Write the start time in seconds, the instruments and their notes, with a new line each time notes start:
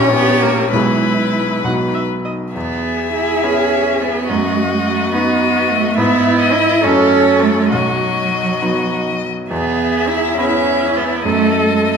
Already playing: grand piano A#1 C#4 E4 G4, cello C#4, viola G4, violin C#5
0.13 cello B3
0.42 cello A#3
0.73 grand piano B1 B3 E4 G#4, cello G#3, viola E4, violin B4
1.64 grand piano B1 B3 D#4 F#4, viola F#5
1.94 viola E5
2.25 viola D#5
2.55 grand piano E2, cello B3, viola G#4, violin E5
3.14 cello E4
3.43 grand piano B3 E4 G#4, cello C#4
4.02 cello B3
4.29 grand piano F#2, cello A3, viola F#4, violin D#5
4.71 cello G#3
4.85 cello A3
5.12 grand piano B3 D#4 B4, cello B3, violin D#5
5.70 cello A3
5.97 grand piano G#2 B3 E4 B4, cello B3, viola E4, violin E5
6.40 violin D#5
6.54 cello E4
6.83 grand piano F#2 A3 C#4 F#4, cello C#4, viola A4, violin C#5
7.42 cello A3
7.72 grand piano B1, cello F#3, viola F#4, violin D#5
8.62 grand piano B3 D#4 F#4
9.50 grand piano E2, cello B3, viola G#4, violin E5
10.09 cello E4
10.38 grand piano B3 E4 G#4, cello C#4, viola E4
10.97 cello B3
11.24 grand piano F#2, cello A3, viola A4, violin D#5
11.68 cello G#3
11.82 cello A3